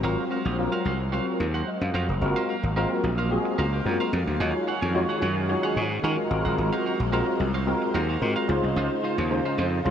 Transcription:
Already playing: F#3 G#3 C4
0.03 G#1 F#3 C4 F4 F#4 A#4 C5 F5
0.30 F#4 C5 F5
0.45 A#1 F#4 C5 F5
0.58 F#3 C4 F4 A#4, muted clean electric guitar stroke
0.72 F#4 C5 F5
0.85 C2 F#4 C5 F5
0.99 muted clean electric guitar stroke
1.12 F#3 C4 F4 F#4 A#4 C5 F5
1.27 muted clean electric guitar stroke
1.40 D#2, muted clean electric guitar stroke
1.54 F#4 C5 F#5
1.68 C5 D#5
1.81 F#2 F5, muted clean electric guitar stroke
1.94 F2 F#4 C5 F5
2.09 F1 F#4 A#4, muted clean electric guitar stroke
2.21 F#1 F#3 G#3 A#3 C4 F4 F#4 A#4 F5, muted clean electric guitar stroke
2.36 A#4 C5 F5
2.49 A#4 C5 F5
2.63 G#1, muted clean electric guitar stroke
2.76 G#3 C4 F4 F#4 A#4 C5 F5
2.91 muted clean electric guitar stroke
3.04 A#1, muted clean electric guitar stroke
3.18 A#4 C5 F5
3.31 G#3 C4 F4 F#4 G#4, muted clean electric guitar stroke
3.45 muted clean electric guitar stroke
3.58 C#2 A#4 C5 F5
3.73 A#4 C5 F5
3.85 F#2 G#3 C4 F4 F#4 A#4, muted clean electric guitar stroke
4.00 A#4 C5 F5
4.13 F2, muted clean electric guitar stroke
4.27 D2, muted clean electric guitar stroke
4.39 D#2 D#3 F#3 G#3 C#4 D#4 F4 F#4 G#4 C#5 F#5
4.55 muted clean electric guitar stroke
4.67 G#4 C#5 F#5
4.81 F2 G#4 C#5 G#5
4.94 G#3 D#4 F4 F#4 C#5, muted clean electric guitar stroke
5.09 G#4 C#5 F#5
5.21 F#2 G#4 C#5 F#5
5.36 muted clean electric guitar stroke
5.48 G#3 D#4 F4 F#4 C#5, muted clean electric guitar stroke
5.63 G#4 C#5 F#5
5.76 G#2 G#4 C#5 G#5
5.91 muted clean electric guitar stroke
6.03 D#3 G#3 D#4 F4 F#4 G#4 A#4 C#5 F#5
6.18 muted clean electric guitar stroke
6.30 G#1 G#3 C4 F4 F#4 A#4 C5, muted clean electric guitar stroke
6.45 G1 F#4 C5 F#5
6.58 G#1, muted clean electric guitar stroke
6.73 F#4 C5 F5
6.86 F#4 C5 F5
7.00 A#1, muted clean electric guitar stroke
7.12 G#3 C4 F4 F#4 A#4 C5 F5
7.27 muted clean electric guitar stroke
7.40 C2, muted clean electric guitar stroke
7.54 F#4 C5 F5
7.66 G#3 C4 F4 F#4 A#4, muted clean electric guitar stroke
7.82 muted clean electric guitar stroke
7.94 D#2 F#4 C5 F5
8.09 F#4 C5 F5
8.21 G#2 G#3 C4 F4 F#4 A#4, muted clean electric guitar stroke
8.36 F#4 C5 F5
8.48 C#2 C#3 G#3 C#4 D#4 F4 C5, muted clean electric guitar stroke
8.63 C2, muted clean electric guitar stroke
8.76 C#2 D#4 F4 C5
8.91 muted clean electric guitar stroke
9.04 D#4 F4 C5
9.18 D#2 D#4 F4 C#5
9.30 G#3 C#4 D#4 F4 C5, muted clean electric guitar stroke
9.45 D#4 F4 C5
9.58 F2 D#4 F4 C5
9.72 muted clean electric guitar stroke
9.85 C2 G#3 C#4 D#4 F4 C5, muted clean electric guitar stroke

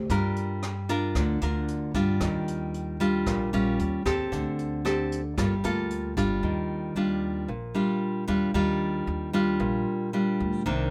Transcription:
0.10 G2 G3 D4 F4 A#4, kick, closed hi-hat
0.36 closed hi-hat
0.63 cross-stick, closed hi-hat
0.89 D4 F4 A#4, closed hi-hat
1.15 D2 D3, kick, cross-stick, closed hi-hat
1.41 D2 D4 F4 A#4, closed hi-hat
1.68 closed hi-hat
1.94 G2 G3 D4 F4, kick, closed hi-hat
2.20 D#2 D#3, kick, cross-stick, closed hi-hat
2.48 closed hi-hat
2.74 closed hi-hat
3.00 G3 D4 F4, closed hi-hat
3.26 A#1 A#2, kick, cross-stick, closed hi-hat
3.53 A#1 G3 C#4 F4, closed hi-hat
3.79 D#2, closed hi-hat
4.05 D#2 C4 G4 A4, kick, cross-stick, closed hi-hat
4.32 D2 D3, kick, closed hi-hat
4.59 closed hi-hat
4.85 C4 G4 A4, cross-stick, closed hi-hat
5.12 closed hi-hat
5.37 G1 G3 A#3 F4 A4, kick, cross-stick, closed hi-hat
5.64 D2 A#3 F4 A4, closed hi-hat
5.91 closed hi-hat
6.17 G1 G3 D4 F4, kick, closed hi-hat
6.43 D#2 D#3
6.96 D#2 G3 D4 F4
7.48 A#1 A#2
7.75 G3 D4 F4
8.28 D#2 G3 D4 F4
8.54 D#2 D#3 G3 D4 F4
9.07 D#2
9.33 G3 D4 F4
9.60 A#1 A#2
10.13 G3 D4 F4
10.40 D2
10.66 C2 C3 D#3 A#3 D4

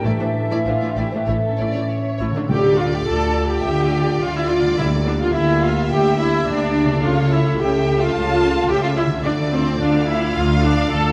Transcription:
Already playing: E4 E5
0.04 A1 A2 E3 A3 E4 A4 D5 E5
0.19 A2 A3 D4 C5
0.24 D4
0.45 A4
0.51 A2 A3 E4 D5
0.65 A1 A2 A3 D4 F4 C5 E5
0.81 A2 A3 E4 D5
0.86 D5
0.96 A1 A2 A3 E4 G4 D5
1.06 A4
1.11 A2 A3 D4 C5
1.26 A1 A2 A3 E4 A4 C#5
1.48 C#4
1.57 A1 A2 A3 E4 C#5 D5
1.68 A4 C#5
1.75 A2 A3 E4
1.89 C#5 E5
2.09 C#5
2.18 A1 A2 A3 E4 C#5
2.30 D3 A4
2.34 A2 A3 D4 A#4
2.40 F4
2.44 A4
2.49 D2 D3 A3 F4 G4 D5 G5
2.79 F4 F5
2.93 G4 G5
3.06 D2 D3 A4 A5
3.50 G4 G5
3.63 D2 D3 E5
3.91 D5
4.21 D2 D3 F4 F5
4.36 E4 E5
4.49 F4 F5
4.61 D3
4.65 G3
4.70 E4
4.74 E4 A#4 E5
4.79 D2 D3 A#3 G4
5.05 D4 D5
5.19 F4 F5
5.32 D2 D3 E4 E5
5.61 F4 F5
5.90 D2 D3 G4 G5
6.18 E4 E5
6.45 D2 D3 D4 D5
6.84 C#3
6.89 A3
6.93 E4
6.98 A4
7.02 C#2 C#3 A3 F4 A4 C#5 F5
7.31 E4 E5
7.59 C#2 C#3 G4 E5 G5
8.00 F4 F5
8.14 C#2 C#3 A5
8.68 C#2 C#3 G4 E5 G5
8.83 F4 F5
8.96 E4 E5
9.06 D3
9.11 A3
9.15 F4
9.20 A4
9.24 D2 D3 D4 F4 D5
9.51 C4 C5
9.80 D2 D3 D4 D5 F5
10.07 E4 E5
10.35 D2 D3 F4 F5
10.63 D4 D5
10.90 D2 D3 A4 A5

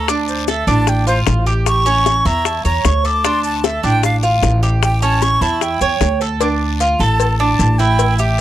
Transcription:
Already playing: D2 A#5
0.08 D4 A5, high bongo, long guiro, maracas
0.28 C5, maracas
0.48 A4 E5, high bongo, short guiro, maracas
0.67 A1 D4 A5, short guiro, maracas
0.87 G5, high bongo, long guiro, maracas
1.07 F4 C5, maracas
1.27 A1, high bongo, low bongo, short guiro, maracas
1.46 G4, short guiro, maracas
1.66 C#6, high bongo, long guiro, maracas
1.86 C#4, high bongo, maracas
2.06 high bongo, short guiro, maracas
2.25 E2 E4 A#5, high bongo, short guiro, maracas
2.45 A5, high bongo, long guiro, maracas
2.65 E2 C#5 A#5, high bongo, maracas
2.85 D2 C#6, high bongo, low bongo, short guiro, maracas
3.05 A4 D6, short guiro, maracas
3.24 D4 C6, high bongo, long guiro, maracas
3.44 A5, maracas
3.64 A4 E5, high bongo, short guiro, maracas
3.83 A1 D4 G5, short guiro, maracas
4.03 F5, high bongo, long guiro, maracas
4.23 F4, maracas
4.42 A1, high bongo, low bongo, short guiro, maracas
4.63 G4, short guiro, maracas
4.83 G5, high bongo, long guiro, maracas
5.02 C#4 A5, high bongo, maracas
5.22 C#6, high bongo, short guiro, maracas
5.41 E2 E4 A5, high bongo, short guiro, maracas
5.61 G5, high bongo, long guiro, maracas
5.81 E2 C#5, high bongo, maracas
6.01 D2, high bongo, low bongo, short guiro, maracas
6.21 A4, short guiro, maracas
6.41 D4, cowbell, long guiro, maracas
6.80 F4, cowbell, short guiro, maracas
7.00 A1 A4 A5, short guiro, maracas
7.20 cowbell, long guiro, maracas
7.39 D4 A5
7.59 A1, cowbell, short guiro, maracas
7.78 E4 G5, cowbell, short guiro, maracas
7.99 cowbell, long guiro, maracas
8.18 G4 E5, maracas

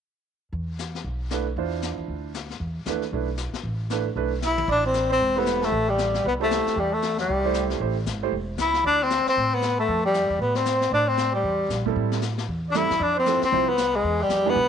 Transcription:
0.53 E2, brush sweep
0.79 snare, hi-hat pedal
0.95 snare
1.04 B1, brush sweep
1.30 A3 D4 E4 B4, snare, hi-hat pedal
1.57 E2 D4 E4 F4 C5, brush sweep
1.82 snare, hi-hat pedal
1.98 D#2
2.08 D2, brush sweep
2.34 snare, hi-hat pedal
2.50 snare
2.60 E2, brush sweep
2.86 D#2 A3 D4 E4 B4, snare, hi-hat pedal
3.02 snare
3.12 B1 A3 D4 E4 B4, brush sweep
3.37 snare, hi-hat pedal
3.53 muted upright bass stroke, snare
3.63 A1, brush sweep
3.90 A3 D4 E4 B4, snare, hi-hat pedal
4.16 B1 A3 D4 E4 B4, brush sweep
4.42 E5, snare, hi-hat pedal
4.46 E4
4.58 high tom
4.68 A1 D4 D5, brush sweep, kick, ride
4.85 C4 C5
4.93 snare, hi-hat pedal
5.10 C4 C5
5.20 E1, brush sweep
5.36 A3 B3 E4 G4 B4 C5
5.46 snare, hi-hat pedal
5.62 A3 A4, snare
5.72 A1, brush sweep
5.88 G3 G4
5.98 snare, hi-hat pedal
6.14 snare
6.24 C2 B3 B4, brush sweep
6.40 A3 E4 G4 A4 C5
6.51 snare, hi-hat pedal
6.66 muted upright bass stroke, snare
6.76 E2 G3 G4, brush sweep
6.91 A3 A4
7.02 snare, hi-hat pedal
7.18 G3 G4, snare
7.28 C2, brush sweep
7.44 A3 E4 G4 C5
7.54 snare, hi-hat pedal
7.70 snare
7.80 A1 A3 E4 G4 C5, brush sweep
8.06 G#1, snare, hi-hat pedal
8.23 A3 E4 G4 C5
8.32 E1, brush sweep
8.58 C#2 E4 E5, snare, hi-hat pedal
8.74 snare
8.84 D2 D4 D5, brush sweep
9.02 C4 C5
9.10 snare, hi-hat pedal
9.26 C4 C5, muted upright bass stroke, snare
9.36 A2, brush sweep
9.54 B3 B4
9.62 snare, hi-hat pedal
9.78 A3 A4
9.88 F2, brush sweep
10.04 G3 G4
10.14 snare, hi-hat pedal
10.29 E2
10.39 A2 B3 B4, brush sweep
10.55 C4 C5, snare
10.65 snare, hi-hat pedal
10.81 snare
10.91 A2 D4 D5, brush sweep
11.07 C4 C5
11.17 snare, hi-hat pedal
11.32 G3 G4
11.43 E2, brush sweep
11.69 A#1, snare, hi-hat pedal
11.86 G3 C4 E4 A4, kick
11.96 A2, brush sweep
12.12 snare
12.22 snare, hi-hat pedal
12.38 snare
12.48 E2, brush sweep
12.69 D4 D5
12.74 G3 C4 E4 A4 E5, snare, hi-hat pedal
12.90 F#2, snare
13.00 F2 D4 D5, brush sweep
13.16 C5
13.20 C4
13.26 F3 C4 E4 A4, snare, hi-hat pedal
13.42 C4 C5, muted upright bass stroke, snare
13.52 C2 F3 C4 E4 C5, brush sweep
13.67 B3 B4
13.78 snare, hi-hat pedal
13.95 G#3 G#4
14.04 E2, brush sweep
14.21 G3 G4
14.29 F2, snare, hi-hat pedal
14.45 E3 G#3 D4 G4 B4
14.50 B3
14.55 B1, brush sweep

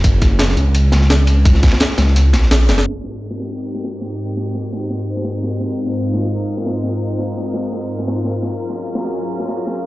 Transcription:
0.04 F#1, kick, closed hi-hat, ride
0.22 kick, snare, closed hi-hat, ride
0.39 snare, closed hi-hat, ride
0.48 snare
0.57 C#2, closed hi-hat
0.74 closed hi-hat, ride
0.92 C#2, snare, closed hi-hat, ride
1.02 snare
1.10 snare, closed hi-hat, ride
1.27 closed hi-hat, ride
1.45 kick, closed hi-hat, ride
1.54 snare
1.63 kick, snare, closed hi-hat, ride
1.67 snare, ride
1.71 snare, ride
1.80 snare, closed hi-hat, ride
1.90 snare
1.98 C#2, snare, closed hi-hat, ride
2.07 snare
2.16 snare, closed hi-hat, ride
2.33 A#1, snare, closed hi-hat, ride
2.42 snare
2.51 A#1, snare, closed hi-hat, ride
2.69 F#1, snare, closed hi-hat
2.78 snare, ride
2.87 G#2 C4 D#4 G4 A#4, ride, crash
3.04 snare, ride
3.22 ride
3.31 snare
3.40 snare, ride
3.57 ride
3.75 snare, ride
3.84 snare
3.92 ride
4.01 snare
4.10 ride
4.28 ride
4.37 snare
4.46 ride
4.55 snare
4.64 ride
4.73 snare
4.81 ride
4.90 snare
4.99 ride
5.16 snare, ride
5.24 snare
5.34 ride
5.43 snare
5.52 ride
5.60 snare
5.69 F4, ride
5.86 snare, ride
6.04 ride
6.14 snare
6.22 snare, ride
6.39 ride
6.57 snare, ride
6.66 snare
6.75 ride
6.84 snare
6.92 ride
7.10 ride
7.18 snare
7.28 ride
7.37 snare
7.46 ride
7.54 snare
7.63 ride
7.72 snare
7.81 ride
7.99 snare, ride
8.07 snare
8.16 ride
8.25 snare
8.34 ride
8.42 snare
8.51 F#3 C#4 G#4, ride
8.69 snare, ride
8.87 ride
8.95 snare
9.04 snare, ride
9.21 ride
9.40 snare, ride
9.48 snare
9.57 ride
9.67 snare
9.75 ride

